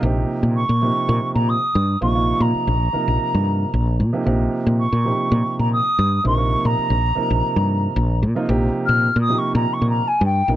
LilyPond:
<<
  \new Staff \with { instrumentName = "Flute" } { \time 4/4 \key bes \dorian \tempo 4 = 114 r4 des'''4. bes''16 ees'''4 des'''16~ | des'''8 bes''2. r8 | r4 des'''4. bes''16 ees'''4 des'''16~ | des'''8 bes''2. r8 |
\tuplet 3/2 { r4 f'''8~ f'''8 ees'''8 des'''8 bes''8 des'''8 bes''8 aes''8 g''8. r16 } | }
  \new Staff \with { instrumentName = "Grand piano" } { \time 4/4 \key bes \dorian <c f bes ees' g'>4 r8 <c f bes ees' g'>4. r8. <c f bes ees' f'>16 | <c f bes ees' f'>4 r8 <c f bes ees' bes'>4. r8. <c f bes ees' g'>16 | <c f bes ees' g'>4 r8 <c f bes ees' g'>4. r8. <c f bes ees' bes'>16 | <c f bes ees' bes'>4 r8 <c f bes ees' bes'>4. r8. <c f bes ees' f'>16 |
<c f bes ees' g'>4 r8 <c f bes ees' g'>4. r8. <c f bes ees' bes'>16 | }
  \new Staff \with { instrumentName = "Fretless electric bass" } { \clef bass \time 4/4 \key bes \dorian bes,,8 r16 bes,8 bes,8 r16 bes,16 r16 bes,8 r16 g,8 bes,,16~ | bes,,8 bes,16 r16 bes,,8 r16 bes,,16 r16 g,8. bes,,8 bes,16 r16 | bes,,8 r16 bes,8 bes,8 r16 bes,16 r16 bes,8 r16 g,8 bes,,16~ | bes,,8 bes,16 r16 bes,,8 r16 bes,,16 r16 g,8. bes,,8 bes,16 r16 |
bes,,8 r16 bes,8 bes,8 r16 bes,16 r16 bes,8 r16 g,8 bes,,16 | }
>>